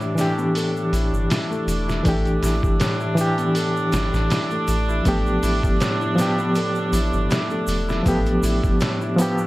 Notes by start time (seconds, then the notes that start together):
Already playing: A2 E3 D4 G4
0.00 E4, shaker
0.15 E3 D4, snare, open hi-hat, shaker
0.21 G4
0.38 B3, shaker
0.55 A4, open hi-hat, shaker
0.76 shaker
0.93 A1 E4, open hi-hat, shaker
1.13 G1, shaker
1.30 E4, snare, open hi-hat, shaker
1.51 A3, shaker
1.67 E1, open hi-hat, shaker
1.88 E4, snare, shaker
2.03 A1 E3 A3 D4, kick, open hi-hat, shaker
2.08 G4
2.25 closed hi-hat, shaker
2.42 A1 E4, snare, open hi-hat, shaker
2.63 G1, kick, shaker
2.80 A2, snare, open hi-hat, shaker
3.00 E4, shaker
3.15 E3 D4, open hi-hat, shaker
3.21 G4
3.38 B3, closed hi-hat, shaker
3.55 A4, open hi-hat, shaker
3.77 shaker
3.92 G1 E4, snare, open hi-hat, shaker
4.13 A1, snare, shaker
4.30 E4, snare, open hi-hat, shaker
4.51 A3, shaker
4.68 A1, open hi-hat, shaker
4.89 E4, shaker
5.03 A1 F3 A3 B3, kick, open hi-hat, shaker
5.08 G4
5.26 shaker
5.43 A1 E4, open hi-hat, shaker
5.63 G1, kick, shaker
5.80 A2, snare, open hi-hat, shaker
6.01 E4, shaker
6.16 F3 B3, snare, open hi-hat, shaker
6.21 G4
6.39 B3, shaker
6.55 A4, open hi-hat, shaker
6.75 shaker
6.92 A1 E4, open hi-hat, shaker
7.13 G1, shaker
7.30 E4, snare, open hi-hat, shaker
7.50 A3, shaker
7.67 E1, open hi-hat, shaker
7.89 E4, snare, shaker
8.03 A1 F3 A3 B3, kick, open hi-hat, shaker
8.08 G4
8.26 closed hi-hat, shaker
8.42 A1 E4, open hi-hat, shaker
8.64 G1, kick, shaker
8.80 A2, snare, open hi-hat, shaker
9.01 E4, shaker
9.16 F3 B3, open hi-hat, shaker
9.22 G4
9.38 B3, shaker